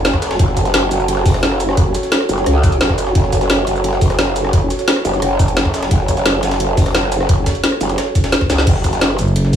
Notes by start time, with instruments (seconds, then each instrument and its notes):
Already playing: wobble bass F#1, ambient pad F#4 A4 C#5
0.05 snare, closed hi-hat, ride
0.14 kick, cross-stick, ride
0.22 snare, closed hi-hat, ride, shaker
0.31 snare, ride
0.39 wobble bass F#1, kick, closed hi-hat, ride
0.48 snare
0.57 kick, closed hi-hat, ride, shaker
0.65 snare, closed hi-hat, shaker
0.74 snare, closed hi-hat, ride
0.91 wobble bass F#1, snare, closed hi-hat, ride, shaker
1.00 shaker
1.08 closed hi-hat, ride
1.17 snare
1.26 kick, closed hi-hat, open hi-hat, shaker
1.34 cross-stick, snare, closed hi-hat
1.43 wobble bass F#1, snare, closed hi-hat, ride
1.51 cross-stick, snare
1.60 snare, closed hi-hat, ride, shaker
1.69 cross-stick, snare
1.77 kick, closed hi-hat, ride
1.95 snare, closed hi-hat, ride, shaker
2.03 snare, closed hi-hat, shaker
2.12 snare, closed hi-hat, ride
2.20 cross-stick
2.29 wobble bass F#1, closed hi-hat, ride, shaker
2.38 snare, shaker
2.46 wobble bass C#2, cross-stick, closed hi-hat, ride
2.63 kick, closed hi-hat, ride, shaker
2.72 closed hi-hat, shaker
2.81 wobble bass F#1, snare, closed hi-hat, ride
2.89 kick, cross-stick, ride
2.98 closed hi-hat, ride, shaker
3.07 snare
3.15 wobble bass F#1, kick, closed hi-hat, ride
3.24 snare
3.32 kick, closed hi-hat, ride, shaker
3.41 snare, closed hi-hat, shaker
3.50 snare, closed hi-hat, ride
3.67 wobble bass F#1, snare, closed hi-hat, ride, shaker
3.76 shaker
3.84 closed hi-hat, ride
3.93 snare
4.01 kick, closed hi-hat, open hi-hat, shaker
4.10 cross-stick, snare, closed hi-hat
4.19 wobble bass F#1, snare, closed hi-hat, ride
4.27 cross-stick, snare
4.36 snare, closed hi-hat, ride, shaker
4.44 cross-stick, snare
4.53 kick, closed hi-hat, ride
4.70 snare, closed hi-hat, ride, shaker
4.79 snare, closed hi-hat, shaker
4.88 snare, closed hi-hat, ride
4.96 cross-stick
5.05 wobble bass F#1, closed hi-hat, ride, shaker
5.13 snare, shaker
5.22 wobble bass F#1, cross-stick, closed hi-hat, ride
5.39 kick, closed hi-hat, ride, shaker
5.48 closed hi-hat, shaker
5.57 snare, closed hi-hat, ride
5.65 kick, cross-stick, ride
5.74 snare, closed hi-hat, ride, shaker
5.83 snare, ride
5.91 wobble bass F#1, kick, closed hi-hat, ride
6.00 snare
6.08 kick, closed hi-hat, ride, shaker
6.17 snare, closed hi-hat, shaker
6.26 snare, closed hi-hat, ride
6.43 wobble bass F#1, snare, closed hi-hat, ride, shaker
6.51 snare, ride, shaker
6.60 closed hi-hat, ride
6.77 kick, closed hi-hat, open hi-hat, shaker
6.86 cross-stick, snare, closed hi-hat
6.95 wobble bass F#1, snare, closed hi-hat, ride
7.03 cross-stick, snare
7.12 snare, closed hi-hat, ride, shaker
7.20 cross-stick, snare
7.29 kick, closed hi-hat, ride
7.46 kick, snare, closed hi-hat, ride, shaker
7.55 closed hi-hat, shaker
7.64 snare, closed hi-hat, ride
7.72 cross-stick
7.81 wobble bass F#1, closed hi-hat, ride, shaker
7.89 snare, closed hi-hat, shaker
7.98 cross-stick, snare, closed hi-hat, ride
8.15 kick, snare, closed hi-hat, ride, shaker
8.24 snare, closed hi-hat, ride, shaker
8.32 snare, closed hi-hat
8.41 kick, cross-stick, snare, ride
8.50 wobble bass C#2, snare, closed hi-hat, ride, shaker
8.58 snare
8.67 wobble bass F#1, kick, closed hi-hat, crash, ride
8.76 snare
8.84 kick, closed hi-hat, ride, shaker
8.93 snare, closed hi-hat, shaker
9.01 snare, closed hi-hat, ride
9.19 fm bass F#1, snare, closed hi-hat, ride, shaker
9.27 shaker
9.36 closed hi-hat, ride
9.45 snare